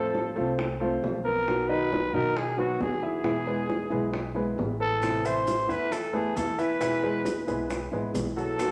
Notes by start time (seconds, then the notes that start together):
Already playing: A1 F3 A3 C4 F4 A4 C5
0.15 F3 A3 C4 F4, high bongo
0.36 C2 A3 C4 F4 A4 C5, high bongo
0.40 A3
0.59 muted nylon-string guitar stroke, high bongo
0.80 A3 C4 F4 A4 C5, high bongo
1.02 B1 F3 A3 C4 F4, high bongo, low bongo
1.25 B3 A#4
1.46 B2 F#3 B3 D#4 F#4, high bongo
1.68 D#3 D#4 B4 D#5, high bongo
1.91 F#3 B3 D#4 F#4, high bongo
2.13 B2 D#3 F#3 B3 D#4 F#4 A#4 D#5, high bongo
2.37 G#4, high bongo
2.57 F#3 B3 D#4 F#4 B4, high bongo
2.79 E2 F#3 B3 D#4 G#4, high bongo, low bongo
3.02 E3 E4 G#4 E5
3.23 B2 E3 G#3 B3 E4 E5, high bongo
3.47 G#3 G#4 B4, high bongo
3.68 E3 G#3 B3 E4, high bongo
3.90 B1 E3 G#3 B3 E4 G#4 B4, high bongo
4.12 muted nylon-string guitar stroke, high bongo
4.34 E3 G#3 B3 E4 G#4 B4, high bongo
4.57 A1 E3 G#3 B3 E4, high bongo, low bongo
4.80 A4 B4
5.01 C3 E3 A3 B3 E4, high bongo, maracas
5.25 E3 E4 C5 E5, high bongo, maracas
5.47 E3 A3 B3 E4, high bongo, maracas
5.69 E2 E3 A3 B3 E4 B4 E5, high bongo, maracas
5.92 A4, muted nylon-string guitar stroke, high bongo, maracas
6.13 E3 A3 B3 E4 G#4 A4 B4, high bongo
6.36 E2 E3 A3 B3 E4 A4, high bongo, low bongo, maracas
6.58 E3 E4 B4 E5, maracas
6.80 B2 E3 G#3 B3 E4 E5, high bongo, maracas
7.03 G#3 G#4 B4, high bongo
7.25 E3 G#3 B3 E4, high bongo, maracas
7.47 B1 E3 G#3 B3 E4 G#4 B4, high bongo, maracas
7.70 muted nylon-string guitar stroke, high bongo, maracas
7.91 A1 E3 G#3 B3 E4 G#4 B4, high bongo
8.13 B1 E3 G#3 B3 E4, high bongo, low bongo, maracas
8.36 F#3 F#4 A4, maracas
8.58 B2 D#3 A3 B3 F#4, high bongo, maracas